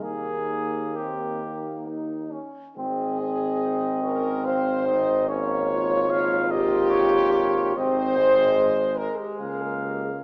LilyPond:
<<
  \new Staff \with { instrumentName = "Flugelhorn" } { \time 3/4 \key aes \major \tempo 4 = 71 aes'4 g'4 r4 | ees''2 f''8 ees''8 | des''4 f''8 ees''8 des''8 des''8 | ees''4. r8 f''4 | }
  \new Staff \with { instrumentName = "French horn section" } { \time 3/4 \key aes \major r2. | aes'4. bes'8 c''4 | des''4. g'4. | c''4. bes'16 g'16 aes'16 bes'16 g'16 aes'16 | }
  \new Staff \with { instrumentName = "Trombone section" } { \time 3/4 \key aes \major bes4 c'8 bes8 ees'8 des'8 | r4 ees'8 des'8 c'8 ees'8 | des'8 f'2~ f'8 | ees'8 c'8 aes2 | }
  \new Staff \with { instrumentName = "Euphonium" } { \time 3/4 \key aes \major bes2~ bes8 r8 | c'8 c'2~ c'8 | bes4 bes2 | c'8 aes4 r8 bes4 | }
  \new Staff \with { instrumentName = "Tuba" } { \clef bass \time 3/4 \key aes \major ees,2~ ees,8 r8 | aes,,2.~ | aes,,2. | aes,,4. r8 des,4 | }
>>